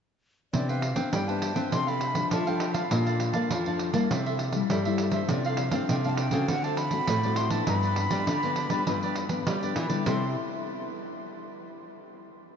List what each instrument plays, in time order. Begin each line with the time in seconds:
0.53 nylon-string guitar C3 E3 B3 D4, cavaquinho E4 B4 C5 G5, flute D5, pandeiro
0.69 cavaquinho B4 C5 G5, flute F5, pandeiro
0.82 muted cavaquinho stroke, pandeiro
0.95 nylon-string guitar E3 B3 C4 D4, cavaquinho B4 C5 G5, pandeiro
1.12 nylon-string guitar G2 G3, cavaquinho E4 B4 C5 G5, flute G5, pandeiro
1.28 nylon-string guitar E3 B3 D4, cavaquinho B4 C5 G5, flute A5, pandeiro
1.42 pandeiro
1.55 nylon-string guitar F3 A3 C4 D4, cavaquinho B4 C5 G5, pandeiro
1.72 nylon-string guitar C3, cavaquinho D4 A4 D5 F5, flute C6, pandeiro
1.87 cavaquinho A4 D5 F5, flute B5, pandeiro
2.00 muted cavaquinho stroke, pandeiro
2.15 nylon-string guitar F3 A3 D4, pandeiro
2.30 nylon-string guitar C3 F3, cavaquinho D4 A4 D5 F5, flute A5, pandeiro
2.47 nylon-string guitar F3 A3 D4, cavaquinho A4 D5 F5, flute G5, pandeiro
2.60 cavaquinho D4 A4 D5 F5, pandeiro
2.74 cavaquinho A4 D5 F5, flute F5, pandeiro
2.91 nylon-string guitar A#2 F3 A3 D4, cavaquinho A#4 D5 F5 A5, pandeiro
3.06 cavaquinho D5 F5 A5, pandeiro
3.19 muted cavaquinho stroke, pandeiro
3.33 nylon-string guitar F3 A3 A#3 D4, cavaquinho D5 F5 A5, pandeiro
3.50 nylon-string guitar F2 F3, cavaquinho A#4 D5 F5 A5, pandeiro
3.66 nylon-string guitar F3 A3 D4, cavaquinho D5 F5 A5, pandeiro
3.79 pandeiro
3.94 nylon-string guitar G3 A3 A#3 E4, cavaquinho D5 F5 A5, pandeiro
4.11 nylon-string guitar C3, cavaquinho E4 A4 C5 E5, pandeiro
4.26 cavaquinho A4 C5 E5, pandeiro
4.39 muted cavaquinho stroke, pandeiro
4.53 nylon-string guitar G3 A3 E4, pandeiro
4.70 nylon-string guitar G2 G3, cavaquinho E4 A4 C5 E5, pandeiro
4.85 nylon-string guitar G3 A3 E4, cavaquinho A4 C5 E5, pandeiro
4.98 cavaquinho E4 A4 C5 E5, pandeiro
5.12 nylon-string guitar F3 A3 D4, cavaquinho A4 C5 E5, pandeiro
5.29 nylon-string guitar C3, cavaquinho D4 A4 D5 F5, flute D5, pandeiro
5.45 cavaquinho A4 D5 F5, flute F5, pandeiro
5.57 muted cavaquinho stroke, pandeiro
5.71 nylon-string guitar F3 A3 C4 D4, cavaquinho A4 D5 F5, pandeiro
5.89 nylon-string guitar C3, cavaquinho D4 A4 D5 F5, flute G5, pandeiro
6.04 nylon-string guitar F3 A3 D4, cavaquinho A4 D5 F5, flute A5, pandeiro
6.17 flute G5, pandeiro
6.31 nylon-string guitar C#3 A3 C4 F#4, cavaquinho A4 D5 F5, pandeiro
6.48 nylon-string guitar D3, cavaquinho F#4 A4 C5 D5, flute F#5, pandeiro
6.64 cavaquinho A4 C5 D5, flute A5, pandeiro
6.77 flute B5, muted cavaquinho stroke, pandeiro
6.91 nylon-string guitar A3 C4 F#4, pandeiro
7.07 nylon-string guitar A2, cavaquinho F#4 A4 C5 D5, pandeiro
7.23 nylon-string guitar A3 C4 F#4, cavaquinho A4 C5 D5, pandeiro
7.36 cavaquinho F#4 A4 C5 D5, flute C6, pandeiro
7.50 nylon-string guitar F3 B3 D4, cavaquinho A4 C5 D5, flute A5, pandeiro
7.67 nylon-string guitar G2, cavaquinho F4 G4 B4 D5, flute B5, pandeiro
7.83 cavaquinho G4 B4 D5, pandeiro
7.96 muted cavaquinho stroke, pandeiro
8.10 nylon-string guitar F3 G3 B3 D4, cavaquinho G4 B4 D5, pandeiro
8.27 nylon-string guitar D3, cavaquinho F4 G4 B4 D5, pandeiro
8.43 nylon-string guitar F3 B3 D4, cavaquinho G4 B4 D5, pandeiro
8.56 pandeiro
8.70 nylon-string guitar F3 G3 B3 D4, cavaquinho G4 B4 D5, pandeiro
8.87 nylon-string guitar G2 F3 B3 D4, cavaquinho F4 G4 B4 D5, pandeiro
9.03 cavaquinho G4 B4 D5, pandeiro
9.16 muted cavaquinho stroke, pandeiro
9.29 nylon-string guitar F3 B3 D4, pandeiro
9.47 nylon-string guitar D3 G3, cavaquinho F4 G4 B4 D5, pandeiro
9.62 nylon-string guitar F3 B3 D4, cavaquinho G4 B4 D5, pandeiro
9.76 nylon-string guitar E3, cavaquinho F4 G4 B4 D5, pandeiro
9.89 nylon-string guitar D3 G3 A3 E4, cavaquinho G4 B4 D5, pandeiro
10.06 nylon-string guitar C3 G3 A3 E4, cavaquinho E4 A4 C5 E5, flute C6, pandeiro